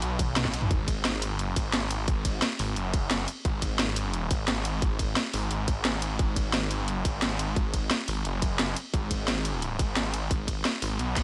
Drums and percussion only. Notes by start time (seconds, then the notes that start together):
0.02 closed hi-hat
0.19 kick, closed hi-hat, high tom, ride bell
0.36 snare, closed hi-hat, mid tom
0.45 kick, snare
0.54 closed hi-hat, ride bell
0.62 mid tom
0.71 kick, closed hi-hat
0.88 kick, closed hi-hat, ride bell
1.05 snare, closed hi-hat
1.22 closed hi-hat, ride bell
1.39 closed hi-hat
1.56 kick, closed hi-hat, ride bell
1.74 snare, closed hi-hat
1.91 closed hi-hat, ride bell
2.08 kick, closed hi-hat
2.25 kick, closed hi-hat, ride bell
2.42 snare, closed hi-hat
2.59 open hi-hat, ride bell
2.76 closed hi-hat
2.94 kick, closed hi-hat, ride bell
3.11 snare, closed hi-hat
3.28 closed hi-hat, ride bell
3.45 kick, closed hi-hat
3.62 kick, closed hi-hat, ride bell
3.79 snare, closed hi-hat
3.96 closed hi-hat, ride bell
4.14 closed hi-hat
4.31 kick, closed hi-hat, ride bell
4.48 snare, closed hi-hat
4.65 closed hi-hat, ride bell
4.82 kick, closed hi-hat
4.99 kick, closed hi-hat, ride bell
5.16 snare, closed hi-hat
5.34 open hi-hat, ride bell
5.51 closed hi-hat
5.68 kick, closed hi-hat, ride bell
5.85 snare, closed hi-hat
6.02 closed hi-hat, ride bell
6.19 kick, closed hi-hat
6.36 kick, closed hi-hat, ride bell
6.54 snare, closed hi-hat
6.71 closed hi-hat, ride bell
6.88 closed hi-hat
7.05 kick, closed hi-hat, ride bell
7.22 snare, closed hi-hat
7.39 closed hi-hat, ride bell
7.56 kick, closed hi-hat
7.74 kick, closed hi-hat, ride bell
7.91 snare, closed hi-hat
8.08 open hi-hat, ride bell
8.25 closed hi-hat
8.42 kick, closed hi-hat, ride bell
8.59 snare, closed hi-hat
8.77 closed hi-hat, ride bell
8.94 kick, closed hi-hat
9.11 kick, closed hi-hat, ride bell
9.28 snare, closed hi-hat
9.45 closed hi-hat, ride bell
9.62 closed hi-hat
9.79 kick, closed hi-hat, ride bell
9.97 snare, closed hi-hat
10.14 closed hi-hat, ride bell
10.31 kick, closed hi-hat
10.48 kick, closed hi-hat, ride bell
10.65 snare, closed hi-hat
10.82 open hi-hat, ride bell
10.99 closed hi-hat
11.16 kick, snare, closed hi-hat, ride bell